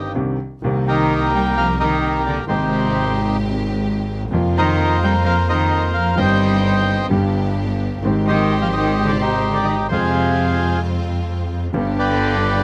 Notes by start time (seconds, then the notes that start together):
Already playing: G1 G2 D#3 C4 D#4 G4 D#5
0.14 C2 C3 D#3 C4 D4 G4
0.62 C2 C3 D#3 A#3 C4 D#4 G4
0.87 D#3 G4 A#4 D#5
1.35 G3 G5
1.57 F3 A#4 F5
1.80 D#3 G4 A#4 D#5
2.26 D3 D5
2.47 G#1 G#2 D#3 G#3 C4 D#4 G4 C5
2.51 C3 G4
4.31 F2 C3 F3 A#3 C4 F4
4.35 F4
4.58 D#3 A#4 C5 D#5
5.03 G3 G5
5.24 F3 A#4 C5 F5
5.49 D#3 A#4 C5 D#5
5.94 F3 F5
6.16 G1 G2 D#3 G3 C4 D#4 G4 C5 D#5 G5
7.09 G1 G2 D3 G3 B3 D4 G4
8.03 G#1 G#2 D#3 G#3 C4 G4
8.07 G4
8.27 D#3 G4 C5 D#5
8.62 F3 F5
8.73 D#3 G4 D#5
8.77 C5
9.06 D3 D5
9.18 C3 D#4 G4 C5
9.51 D3 D5
9.63 D#3 D#5
9.87 F2 C3 F3 G#3 C4 F4 C5
9.92 F2 C4 F4 G#4
11.73 G1 G2 D3 G3 B3 D4 G4
11.99 D3 G4 B4 D5